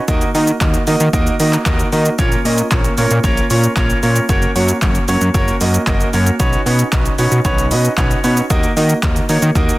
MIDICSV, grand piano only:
0, 0, Header, 1, 2, 480
1, 0, Start_track
1, 0, Tempo, 526316
1, 76, Time_signature, 4, 2, 24, 8
1, 8924, End_track
2, 0, Start_track
2, 0, Title_t, "Grand piano"
2, 0, Program_c, 0, 0
2, 73, Note_on_c, 0, 58, 111
2, 74, Note_on_c, 0, 63, 101
2, 76, Note_on_c, 0, 66, 104
2, 77, Note_on_c, 0, 70, 104
2, 78, Note_on_c, 0, 75, 127
2, 250, Note_off_c, 0, 58, 0
2, 250, Note_off_c, 0, 63, 0
2, 251, Note_off_c, 0, 66, 0
2, 251, Note_off_c, 0, 70, 0
2, 252, Note_off_c, 0, 75, 0
2, 314, Note_on_c, 0, 58, 82
2, 315, Note_on_c, 0, 63, 78
2, 316, Note_on_c, 0, 66, 75
2, 317, Note_on_c, 0, 70, 78
2, 318, Note_on_c, 0, 75, 88
2, 490, Note_off_c, 0, 58, 0
2, 490, Note_off_c, 0, 63, 0
2, 491, Note_off_c, 0, 66, 0
2, 492, Note_off_c, 0, 70, 0
2, 492, Note_off_c, 0, 75, 0
2, 553, Note_on_c, 0, 58, 95
2, 554, Note_on_c, 0, 63, 84
2, 554, Note_on_c, 0, 66, 84
2, 555, Note_on_c, 0, 70, 82
2, 557, Note_on_c, 0, 75, 100
2, 729, Note_off_c, 0, 58, 0
2, 730, Note_off_c, 0, 63, 0
2, 730, Note_off_c, 0, 66, 0
2, 731, Note_off_c, 0, 70, 0
2, 731, Note_off_c, 0, 75, 0
2, 793, Note_on_c, 0, 58, 84
2, 794, Note_on_c, 0, 63, 82
2, 795, Note_on_c, 0, 66, 77
2, 796, Note_on_c, 0, 70, 78
2, 798, Note_on_c, 0, 75, 98
2, 970, Note_off_c, 0, 58, 0
2, 970, Note_off_c, 0, 63, 0
2, 970, Note_off_c, 0, 66, 0
2, 971, Note_off_c, 0, 70, 0
2, 972, Note_off_c, 0, 75, 0
2, 1033, Note_on_c, 0, 58, 113
2, 1035, Note_on_c, 0, 63, 102
2, 1036, Note_on_c, 0, 66, 101
2, 1037, Note_on_c, 0, 70, 104
2, 1039, Note_on_c, 0, 75, 124
2, 1210, Note_off_c, 0, 58, 0
2, 1210, Note_off_c, 0, 63, 0
2, 1211, Note_off_c, 0, 66, 0
2, 1212, Note_off_c, 0, 70, 0
2, 1212, Note_off_c, 0, 75, 0
2, 1274, Note_on_c, 0, 58, 89
2, 1275, Note_on_c, 0, 63, 81
2, 1275, Note_on_c, 0, 66, 79
2, 1277, Note_on_c, 0, 70, 82
2, 1278, Note_on_c, 0, 75, 96
2, 1450, Note_off_c, 0, 58, 0
2, 1451, Note_off_c, 0, 63, 0
2, 1451, Note_off_c, 0, 66, 0
2, 1452, Note_off_c, 0, 70, 0
2, 1452, Note_off_c, 0, 75, 0
2, 1514, Note_on_c, 0, 58, 107
2, 1516, Note_on_c, 0, 63, 101
2, 1516, Note_on_c, 0, 66, 104
2, 1518, Note_on_c, 0, 70, 98
2, 1519, Note_on_c, 0, 75, 121
2, 1690, Note_off_c, 0, 58, 0
2, 1691, Note_off_c, 0, 63, 0
2, 1691, Note_off_c, 0, 66, 0
2, 1692, Note_off_c, 0, 70, 0
2, 1692, Note_off_c, 0, 75, 0
2, 1753, Note_on_c, 0, 58, 85
2, 1754, Note_on_c, 0, 63, 78
2, 1755, Note_on_c, 0, 66, 80
2, 1756, Note_on_c, 0, 70, 79
2, 1757, Note_on_c, 0, 75, 95
2, 1929, Note_off_c, 0, 58, 0
2, 1930, Note_off_c, 0, 63, 0
2, 1931, Note_off_c, 0, 66, 0
2, 1931, Note_off_c, 0, 70, 0
2, 1931, Note_off_c, 0, 75, 0
2, 1992, Note_on_c, 0, 58, 112
2, 1994, Note_on_c, 0, 61, 106
2, 1996, Note_on_c, 0, 65, 103
2, 1997, Note_on_c, 0, 70, 101
2, 1998, Note_on_c, 0, 73, 123
2, 2169, Note_off_c, 0, 58, 0
2, 2170, Note_off_c, 0, 61, 0
2, 2171, Note_off_c, 0, 65, 0
2, 2171, Note_off_c, 0, 70, 0
2, 2172, Note_off_c, 0, 73, 0
2, 2234, Note_on_c, 0, 58, 82
2, 2234, Note_on_c, 0, 61, 73
2, 2236, Note_on_c, 0, 65, 73
2, 2237, Note_on_c, 0, 70, 72
2, 2239, Note_on_c, 0, 75, 94
2, 2410, Note_off_c, 0, 58, 0
2, 2410, Note_off_c, 0, 61, 0
2, 2411, Note_off_c, 0, 65, 0
2, 2412, Note_off_c, 0, 70, 0
2, 2412, Note_off_c, 0, 75, 0
2, 2474, Note_on_c, 0, 58, 93
2, 2475, Note_on_c, 0, 61, 86
2, 2476, Note_on_c, 0, 65, 82
2, 2478, Note_on_c, 0, 70, 86
2, 2479, Note_on_c, 0, 73, 99
2, 2650, Note_off_c, 0, 58, 0
2, 2651, Note_off_c, 0, 61, 0
2, 2651, Note_off_c, 0, 65, 0
2, 2652, Note_off_c, 0, 70, 0
2, 2652, Note_off_c, 0, 73, 0
2, 2715, Note_on_c, 0, 58, 87
2, 2716, Note_on_c, 0, 61, 78
2, 2717, Note_on_c, 0, 65, 78
2, 2718, Note_on_c, 0, 70, 82
2, 2719, Note_on_c, 0, 73, 94
2, 2890, Note_off_c, 0, 58, 0
2, 2891, Note_off_c, 0, 61, 0
2, 2891, Note_off_c, 0, 65, 0
2, 2892, Note_off_c, 0, 70, 0
2, 2893, Note_off_c, 0, 73, 0
2, 2954, Note_on_c, 0, 58, 114
2, 2955, Note_on_c, 0, 61, 104
2, 2957, Note_on_c, 0, 65, 104
2, 2958, Note_on_c, 0, 70, 103
2, 2959, Note_on_c, 0, 73, 124
2, 3130, Note_off_c, 0, 58, 0
2, 3131, Note_off_c, 0, 61, 0
2, 3131, Note_off_c, 0, 65, 0
2, 3132, Note_off_c, 0, 70, 0
2, 3132, Note_off_c, 0, 73, 0
2, 3194, Note_on_c, 0, 58, 86
2, 3195, Note_on_c, 0, 61, 80
2, 3196, Note_on_c, 0, 65, 79
2, 3198, Note_on_c, 0, 70, 78
2, 3199, Note_on_c, 0, 73, 97
2, 3370, Note_off_c, 0, 58, 0
2, 3371, Note_off_c, 0, 61, 0
2, 3371, Note_off_c, 0, 65, 0
2, 3372, Note_off_c, 0, 70, 0
2, 3372, Note_off_c, 0, 73, 0
2, 3433, Note_on_c, 0, 58, 114
2, 3434, Note_on_c, 0, 61, 102
2, 3436, Note_on_c, 0, 65, 108
2, 3437, Note_on_c, 0, 70, 102
2, 3438, Note_on_c, 0, 73, 127
2, 3609, Note_off_c, 0, 58, 0
2, 3610, Note_off_c, 0, 61, 0
2, 3611, Note_off_c, 0, 65, 0
2, 3612, Note_off_c, 0, 70, 0
2, 3612, Note_off_c, 0, 73, 0
2, 3673, Note_on_c, 0, 58, 88
2, 3676, Note_on_c, 0, 61, 81
2, 3676, Note_on_c, 0, 65, 81
2, 3677, Note_on_c, 0, 70, 85
2, 3678, Note_on_c, 0, 73, 97
2, 3850, Note_off_c, 0, 58, 0
2, 3851, Note_off_c, 0, 61, 0
2, 3851, Note_off_c, 0, 65, 0
2, 3852, Note_off_c, 0, 70, 0
2, 3852, Note_off_c, 0, 73, 0
2, 3913, Note_on_c, 0, 58, 111
2, 3914, Note_on_c, 0, 61, 105
2, 3915, Note_on_c, 0, 66, 104
2, 3916, Note_on_c, 0, 70, 104
2, 3918, Note_on_c, 0, 73, 125
2, 4090, Note_off_c, 0, 58, 0
2, 4090, Note_off_c, 0, 61, 0
2, 4091, Note_off_c, 0, 66, 0
2, 4091, Note_off_c, 0, 70, 0
2, 4092, Note_off_c, 0, 73, 0
2, 4152, Note_on_c, 0, 58, 86
2, 4154, Note_on_c, 0, 61, 80
2, 4154, Note_on_c, 0, 66, 77
2, 4156, Note_on_c, 0, 70, 76
2, 4157, Note_on_c, 0, 73, 95
2, 4329, Note_off_c, 0, 58, 0
2, 4330, Note_off_c, 0, 61, 0
2, 4330, Note_off_c, 0, 66, 0
2, 4331, Note_off_c, 0, 70, 0
2, 4331, Note_off_c, 0, 73, 0
2, 4393, Note_on_c, 0, 58, 90
2, 4394, Note_on_c, 0, 61, 83
2, 4395, Note_on_c, 0, 66, 83
2, 4397, Note_on_c, 0, 70, 86
2, 4398, Note_on_c, 0, 73, 103
2, 4569, Note_off_c, 0, 58, 0
2, 4570, Note_off_c, 0, 61, 0
2, 4571, Note_off_c, 0, 66, 0
2, 4571, Note_off_c, 0, 70, 0
2, 4572, Note_off_c, 0, 73, 0
2, 4635, Note_on_c, 0, 58, 86
2, 4636, Note_on_c, 0, 61, 84
2, 4636, Note_on_c, 0, 66, 80
2, 4638, Note_on_c, 0, 70, 80
2, 4639, Note_on_c, 0, 73, 98
2, 4810, Note_off_c, 0, 58, 0
2, 4811, Note_off_c, 0, 61, 0
2, 4811, Note_off_c, 0, 66, 0
2, 4812, Note_off_c, 0, 70, 0
2, 4813, Note_off_c, 0, 73, 0
2, 4872, Note_on_c, 0, 58, 120
2, 4873, Note_on_c, 0, 61, 102
2, 4874, Note_on_c, 0, 66, 100
2, 4876, Note_on_c, 0, 70, 106
2, 4876, Note_on_c, 0, 73, 122
2, 5049, Note_off_c, 0, 58, 0
2, 5050, Note_off_c, 0, 61, 0
2, 5050, Note_off_c, 0, 66, 0
2, 5051, Note_off_c, 0, 70, 0
2, 5051, Note_off_c, 0, 73, 0
2, 5114, Note_on_c, 0, 58, 86
2, 5115, Note_on_c, 0, 61, 83
2, 5116, Note_on_c, 0, 66, 82
2, 5118, Note_on_c, 0, 70, 82
2, 5119, Note_on_c, 0, 75, 95
2, 5290, Note_off_c, 0, 58, 0
2, 5291, Note_off_c, 0, 61, 0
2, 5291, Note_off_c, 0, 66, 0
2, 5292, Note_off_c, 0, 70, 0
2, 5292, Note_off_c, 0, 75, 0
2, 5354, Note_on_c, 0, 58, 111
2, 5355, Note_on_c, 0, 61, 101
2, 5356, Note_on_c, 0, 66, 107
2, 5357, Note_on_c, 0, 70, 105
2, 5357, Note_on_c, 0, 75, 126
2, 5530, Note_off_c, 0, 58, 0
2, 5530, Note_off_c, 0, 61, 0
2, 5531, Note_off_c, 0, 66, 0
2, 5531, Note_off_c, 0, 70, 0
2, 5532, Note_off_c, 0, 75, 0
2, 5592, Note_on_c, 0, 58, 91
2, 5594, Note_on_c, 0, 61, 82
2, 5596, Note_on_c, 0, 66, 80
2, 5596, Note_on_c, 0, 70, 81
2, 5597, Note_on_c, 0, 73, 96
2, 5769, Note_off_c, 0, 58, 0
2, 5770, Note_off_c, 0, 61, 0
2, 5771, Note_off_c, 0, 66, 0
2, 5771, Note_off_c, 0, 70, 0
2, 5772, Note_off_c, 0, 73, 0
2, 5833, Note_on_c, 0, 61, 114
2, 5834, Note_on_c, 0, 63, 104
2, 5835, Note_on_c, 0, 66, 109
2, 5836, Note_on_c, 0, 71, 104
2, 5837, Note_on_c, 0, 73, 124
2, 6009, Note_off_c, 0, 61, 0
2, 6010, Note_off_c, 0, 63, 0
2, 6010, Note_off_c, 0, 66, 0
2, 6011, Note_off_c, 0, 71, 0
2, 6011, Note_off_c, 0, 73, 0
2, 6073, Note_on_c, 0, 61, 87
2, 6074, Note_on_c, 0, 63, 75
2, 6075, Note_on_c, 0, 66, 73
2, 6076, Note_on_c, 0, 71, 77
2, 6078, Note_on_c, 0, 73, 91
2, 6249, Note_off_c, 0, 61, 0
2, 6250, Note_off_c, 0, 63, 0
2, 6250, Note_off_c, 0, 66, 0
2, 6251, Note_off_c, 0, 71, 0
2, 6252, Note_off_c, 0, 73, 0
2, 6314, Note_on_c, 0, 61, 93
2, 6315, Note_on_c, 0, 63, 84
2, 6316, Note_on_c, 0, 66, 86
2, 6317, Note_on_c, 0, 71, 85
2, 6319, Note_on_c, 0, 75, 98
2, 6490, Note_off_c, 0, 61, 0
2, 6490, Note_off_c, 0, 63, 0
2, 6491, Note_off_c, 0, 66, 0
2, 6491, Note_off_c, 0, 71, 0
2, 6492, Note_off_c, 0, 75, 0
2, 6553, Note_on_c, 0, 61, 84
2, 6553, Note_on_c, 0, 63, 81
2, 6554, Note_on_c, 0, 66, 80
2, 6555, Note_on_c, 0, 71, 82
2, 6557, Note_on_c, 0, 73, 94
2, 6729, Note_off_c, 0, 61, 0
2, 6729, Note_off_c, 0, 63, 0
2, 6730, Note_off_c, 0, 66, 0
2, 6730, Note_off_c, 0, 71, 0
2, 6731, Note_off_c, 0, 73, 0
2, 6793, Note_on_c, 0, 61, 115
2, 6794, Note_on_c, 0, 63, 104
2, 6795, Note_on_c, 0, 66, 110
2, 6796, Note_on_c, 0, 71, 105
2, 6797, Note_on_c, 0, 73, 127
2, 6969, Note_off_c, 0, 61, 0
2, 6970, Note_off_c, 0, 63, 0
2, 6971, Note_off_c, 0, 66, 0
2, 6971, Note_off_c, 0, 71, 0
2, 6972, Note_off_c, 0, 73, 0
2, 7033, Note_on_c, 0, 61, 91
2, 7034, Note_on_c, 0, 63, 83
2, 7035, Note_on_c, 0, 66, 79
2, 7036, Note_on_c, 0, 71, 81
2, 7038, Note_on_c, 0, 75, 97
2, 7209, Note_off_c, 0, 61, 0
2, 7210, Note_off_c, 0, 63, 0
2, 7210, Note_off_c, 0, 66, 0
2, 7211, Note_off_c, 0, 71, 0
2, 7212, Note_off_c, 0, 75, 0
2, 7272, Note_on_c, 0, 61, 111
2, 7274, Note_on_c, 0, 63, 105
2, 7275, Note_on_c, 0, 66, 101
2, 7276, Note_on_c, 0, 71, 103
2, 7277, Note_on_c, 0, 73, 125
2, 7449, Note_off_c, 0, 61, 0
2, 7450, Note_off_c, 0, 63, 0
2, 7450, Note_off_c, 0, 66, 0
2, 7451, Note_off_c, 0, 71, 0
2, 7451, Note_off_c, 0, 73, 0
2, 7512, Note_on_c, 0, 61, 88
2, 7512, Note_on_c, 0, 63, 81
2, 7514, Note_on_c, 0, 66, 80
2, 7516, Note_on_c, 0, 71, 82
2, 7517, Note_on_c, 0, 73, 101
2, 7689, Note_off_c, 0, 61, 0
2, 7689, Note_off_c, 0, 63, 0
2, 7690, Note_off_c, 0, 66, 0
2, 7691, Note_off_c, 0, 71, 0
2, 7692, Note_off_c, 0, 73, 0
2, 7753, Note_on_c, 0, 58, 117
2, 7755, Note_on_c, 0, 63, 101
2, 7755, Note_on_c, 0, 66, 104
2, 7757, Note_on_c, 0, 70, 104
2, 7758, Note_on_c, 0, 75, 123
2, 7929, Note_off_c, 0, 58, 0
2, 7930, Note_off_c, 0, 63, 0
2, 7931, Note_off_c, 0, 66, 0
2, 7931, Note_off_c, 0, 70, 0
2, 7932, Note_off_c, 0, 75, 0
2, 7992, Note_on_c, 0, 58, 83
2, 7993, Note_on_c, 0, 63, 77
2, 7995, Note_on_c, 0, 66, 76
2, 7996, Note_on_c, 0, 70, 74
2, 7997, Note_on_c, 0, 75, 92
2, 8169, Note_off_c, 0, 58, 0
2, 8170, Note_off_c, 0, 63, 0
2, 8170, Note_off_c, 0, 66, 0
2, 8171, Note_off_c, 0, 70, 0
2, 8171, Note_off_c, 0, 75, 0
2, 8232, Note_on_c, 0, 58, 90
2, 8234, Note_on_c, 0, 63, 84
2, 8235, Note_on_c, 0, 66, 85
2, 8236, Note_on_c, 0, 70, 82
2, 8237, Note_on_c, 0, 75, 100
2, 8409, Note_off_c, 0, 58, 0
2, 8410, Note_off_c, 0, 63, 0
2, 8410, Note_off_c, 0, 66, 0
2, 8411, Note_off_c, 0, 70, 0
2, 8412, Note_off_c, 0, 75, 0
2, 8474, Note_on_c, 0, 58, 91
2, 8474, Note_on_c, 0, 63, 82
2, 8475, Note_on_c, 0, 66, 79
2, 8476, Note_on_c, 0, 70, 77
2, 8478, Note_on_c, 0, 73, 94
2, 8650, Note_off_c, 0, 58, 0
2, 8650, Note_off_c, 0, 63, 0
2, 8650, Note_off_c, 0, 66, 0
2, 8651, Note_off_c, 0, 70, 0
2, 8652, Note_off_c, 0, 73, 0
2, 8713, Note_on_c, 0, 58, 114
2, 8714, Note_on_c, 0, 63, 104
2, 8716, Note_on_c, 0, 66, 105
2, 8717, Note_on_c, 0, 70, 107
2, 8718, Note_on_c, 0, 75, 121
2, 8890, Note_off_c, 0, 58, 0
2, 8890, Note_off_c, 0, 63, 0
2, 8891, Note_off_c, 0, 66, 0
2, 8891, Note_off_c, 0, 70, 0
2, 8892, Note_off_c, 0, 75, 0
2, 8924, End_track
0, 0, End_of_file